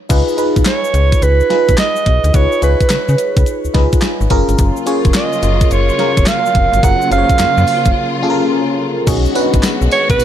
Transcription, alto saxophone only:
0.67 1.24 C#5 medium
1.23 1.79 B4 loud
1.79 2.36 D#5 loud
2.35 2.63 C#5 loud
2.64 3.71 B4 medium
5.16 5.73 D#5 medium
5.72 6.29 C#5 loud
6.28 6.85 F5 loud
6.83 7.11 F#5 loud
7.12 8.20 F5 loud
9.92 10.09 C#5 loud
10.10 10.24 B4 loud

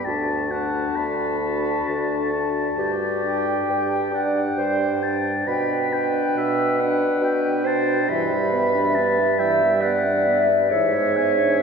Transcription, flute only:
0.07 0.50 A5 soft
0.50 1.40 A5 soft
1.41 2.31 A5 soft
2.32 2.76 A5 soft
3.25 4.12 G5 soft
4.15 5.02 G5 soft
5.03 5.46 G5 soft
5.48 5.91 G5 soft
5.91 6.77 G5 soft
6.77 7.63 G5 soft
7.64 8.07 G5 soft
8.08 11.62 E5 soft

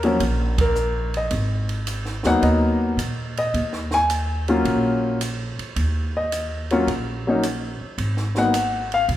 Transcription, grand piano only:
0.00 0.19 F3 medium
0.00 0.19 A#3 medium
0.00 0.56 A#4 medium
0.04 0.19 F#3 medium
0.04 0.19 C#4 medium
0.61 1.11 A#4 medium
1.17 1.32 D#5 medium
2.25 2.95 F#3 medium
2.25 2.95 A#3 medium
2.25 2.95 B3 medium
2.25 2.95 D#4 medium
2.25 2.43 F#5 medium
2.43 3.33 D#5 medium
3.39 3.89 D#5 medium
3.94 4.04 G#5 loud
4.49 5.18 F#3 medium
4.49 5.18 A#3 medium
4.49 5.18 C#4 medium
4.49 5.18 F4 medium
6.17 6.67 D#5 medium
6.71 6.86 F#3 medium
6.71 6.87 A#3 medium
6.71 6.87 C#4 medium
6.71 6.87 F4 medium
6.71 6.88 C#5 medium
7.27 7.42 F#3 medium
7.27 7.42 A#3 medium
7.27 7.43 C#4 medium
7.27 7.43 D#4 medium
8.36 8.52 F#3 soft
8.36 8.53 A#3 soft
8.36 8.53 B3 soft
8.36 8.53 D#4 medium
8.36 8.89 F#5 medium
8.94 9.04 F5 medium

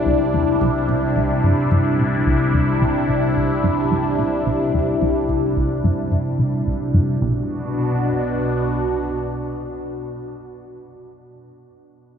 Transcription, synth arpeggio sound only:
0.06 0.17 C2 medium
0.34 0.60 E2 medium
0.61 0.87 C2 loud
0.89 1.06 C2 medium
1.16 1.34 C2 medium
1.44 1.54 G2 medium
1.71 1.97 G2 medium
1.99 2.16 B2 medium
2.26 2.37 C2 medium
2.54 2.80 E2 medium
2.81 3.08 C2 medium
3.09 3.26 C2 medium
3.36 3.54 C2 medium
3.64 3.74 G2 medium
3.92 4.18 G2 medium
4.19 4.37 B2 medium
4.46 4.57 C2 medium
4.74 5.00 E2 medium
5.02 5.28 C2 loud
5.29 5.47 C2 medium
5.57 5.74 C2 medium
5.84 5.95 G2 medium
6.12 6.38 G2 medium
6.39 6.65 C3 medium
6.67 6.84 C2 medium
6.94 7.05 G2 medium
7.22 7.47 B1 medium

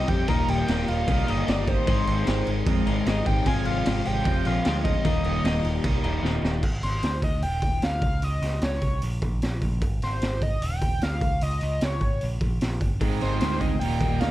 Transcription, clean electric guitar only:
0.00 0.27 G3 medium
0.00 0.27 C4 medium
0.00 0.30 D#4 medium
0.00 0.28 G4 medium
0.28 0.66 D#2 medium
0.28 0.67 A#2 medium
0.28 0.67 D#3 loud
0.28 0.68 G3 loud
0.28 0.69 A#3 loud
0.28 0.70 D#4 loud
0.67 1.08 D#2 loud
0.67 1.08 A#2 loud
0.67 0.89 D#3 loud
0.67 0.88 G3 loud
0.67 0.87 A#3 loud
0.67 0.86 D#4 loud
0.87 1.29 D#3 medium
0.87 1.28 G3 medium
0.87 1.27 A#3 medium
0.87 1.26 D#4 medium
1.27 1.45 D#3 medium
1.27 1.46 G3 medium
1.27 1.47 A#3 medium
1.27 1.48 D#4 medium
1.46 1.86 D#3 medium
1.46 1.86 G3 medium
1.46 1.87 A#3 medium
1.46 1.87 D#4 loud
1.86 2.25 G#2 loud
1.86 2.26 D#3 loud
1.86 2.27 G#3 loud
1.86 2.28 C4 loud
1.86 2.28 D#4 loud
2.26 3.46 G#2 loud
2.26 2.67 D#3 loud
2.26 2.49 G#3 loud
2.26 2.47 C4 loud
2.26 2.45 D#4 loud
2.46 2.89 G#3 medium
2.46 2.87 C4 medium
2.46 2.85 D#4 medium
2.87 3.07 G#3 medium
2.87 3.08 C4 medium
2.87 3.09 D#4 medium
3.07 3.45 D#3 medium
3.07 3.46 G#3 medium
3.07 3.47 C4 loud
3.07 3.47 D#4 medium
3.45 3.84 F2 loud
3.45 3.85 C3 loud
3.45 3.85 F3 medium
3.45 3.86 G#3 loud
3.45 3.87 C4 loud
3.45 3.87 F4 loud
3.85 4.25 F2 loud
3.85 4.25 C3 loud
3.85 4.08 F3 loud
3.85 4.06 G#3 loud
3.85 4.06 C4 loud
3.85 4.04 F4 loud
4.05 4.47 F3 medium
4.05 4.46 G#3 medium
4.05 4.45 C4 medium
4.05 4.44 F4 medium
4.45 4.64 F3 medium
4.45 4.65 G#3 medium
4.45 4.67 C4 medium
4.45 4.67 F4 medium
4.65 5.04 F3 medium
4.65 5.04 G#3 medium
4.65 5.05 C4 medium
4.65 5.05 F4 loud
5.04 5.43 D#2 loud
5.04 5.44 A#2 loud
5.04 5.44 D#3 loud
5.04 5.45 G3 loud
5.04 5.46 A#3 loud
5.04 5.46 D#4 loud
5.44 5.84 D#2 medium
5.44 5.84 A#2 loud
5.44 5.66 D#3 loud
5.44 5.65 G3 loud
5.44 5.64 A#3 loud
5.44 5.62 D#4 loud
5.63 6.06 D#3 medium
5.63 6.05 G3 medium
5.63 6.04 A#3 medium
5.63 6.02 D#4 medium
6.04 6.22 D#3 medium
6.04 6.23 G3 medium
6.04 6.24 A#3 medium
6.04 6.25 D#4 medium
6.23 6.62 D#3 medium
6.23 6.63 G3 medium
6.23 6.63 A#3 medium
6.23 6.63 D#4 medium
13.02 13.81 G#2 medium
13.22 13.61 G#3 medium
13.42 13.81 C4 medium
13.62 13.82 G#3 medium
13.81 14.31 D#2 medium
14.01 14.31 A#3 medium
14.20 14.31 D#3 medium

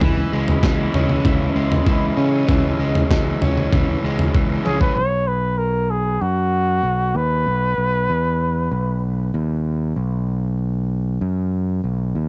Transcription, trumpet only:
4.65 4.80 G#4 medium
4.82 4.97 B4 medium
4.95 5.29 C#5 medium
5.27 5.60 B4 medium
5.58 5.92 A#4 medium
5.90 6.23 G#4 medium
6.21 7.18 F#4 medium
7.16 9.03 B4 medium

